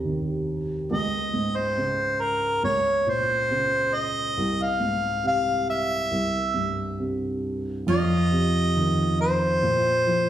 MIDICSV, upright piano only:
0, 0, Header, 1, 2, 480
1, 0, Start_track
1, 0, Key_signature, -4, "minor"
1, 0, Tempo, 864553
1, 504, Time_signature, 4, 2, 24, 8
1, 2424, Tempo, 875912
1, 5673, End_track
2, 0, Start_track
2, 0, Title_t, "Upright piano"
2, 0, Program_c, 0, 0
2, 0, Control_c, 0, 64, 127
2, 0, Note_on_c, 0, 39, 48
2, 0, Note_on_c, 0, 48, 39
2, 26, Note_on_c, 0, 51, 41
2, 479, Note_off_c, 0, 39, 0
2, 479, Note_off_c, 0, 48, 0
2, 490, Note_off_c, 0, 51, 0
2, 503, Note_on_c, 0, 37, 52
2, 511, Control_c, 0, 64, 0
2, 622, Control_c, 0, 64, 127
2, 742, Note_on_c, 0, 44, 44
2, 986, Note_on_c, 0, 49, 41
2, 1439, Note_off_c, 0, 37, 0
2, 1439, Note_off_c, 0, 44, 0
2, 1449, Note_off_c, 0, 49, 0
2, 1461, Note_on_c, 0, 37, 46
2, 1469, Control_c, 0, 64, 0
2, 1552, Control_c, 0, 64, 127
2, 1702, Note_on_c, 0, 46, 36
2, 1947, Note_on_c, 0, 49, 38
2, 2400, Note_off_c, 0, 37, 0
2, 2401, Note_off_c, 0, 46, 0
2, 2411, Note_off_c, 0, 49, 0
2, 2427, Note_on_c, 0, 36, 49
2, 2430, Control_c, 0, 64, 0
2, 2526, Control_c, 0, 64, 127
2, 2662, Note_on_c, 0, 44, 36
2, 2901, Note_on_c, 0, 48, 42
2, 3358, Note_off_c, 0, 44, 0
2, 3359, Note_off_c, 0, 36, 0
2, 3365, Note_off_c, 0, 48, 0
2, 3379, Note_on_c, 0, 36, 42
2, 3385, Control_c, 0, 64, 0
2, 3473, Control_c, 0, 64, 127
2, 3616, Note_on_c, 0, 43, 36
2, 3862, Note_on_c, 0, 48, 37
2, 4322, Note_off_c, 0, 43, 0
2, 4324, Note_off_c, 0, 36, 0
2, 4331, Note_off_c, 0, 48, 0
2, 4343, Note_on_c, 0, 41, 56
2, 4354, Control_c, 0, 64, 0
2, 4453, Control_c, 0, 64, 127
2, 4587, Note_on_c, 0, 48, 42
2, 4832, Note_on_c, 0, 51, 46
2, 5280, Note_off_c, 0, 41, 0
2, 5283, Note_off_c, 0, 48, 0
2, 5292, Note_off_c, 0, 51, 0
2, 5307, Note_on_c, 0, 46, 52
2, 5310, Control_c, 0, 64, 0
2, 5417, Control_c, 0, 64, 127
2, 5547, Note_on_c, 0, 53, 42
2, 5673, Note_off_c, 0, 46, 0
2, 5673, Note_off_c, 0, 53, 0
2, 5673, End_track
0, 0, End_of_file